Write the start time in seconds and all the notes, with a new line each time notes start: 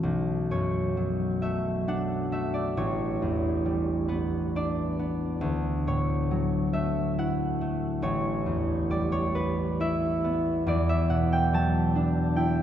Already playing: A3 B3 C#4 D5
0.03 B1
0.51 F#2 C#5
0.97 F#3
1.42 A3 E5
1.88 D4 F#5
2.32 A3 E5
2.54 D5
2.77 A1 C#5
3.22 E2
3.65 G3
4.08 B3 B4
4.56 D4 D5
4.99 B3
5.41 D2
5.87 A2 C#5
6.31 F#3
6.73 A3 E5
7.18 E4 F#5
7.61 A3
8.02 A1 C#5
8.46 E2
8.90 G3 D5
9.12 C#5
9.35 B3 B4
9.80 E4 E5
10.24 B3
10.67 E2 D5
10.89 E5
11.10 B2 F#5
11.32 G5
11.53 F#3 A5
11.95 D4
12.36 E4 G5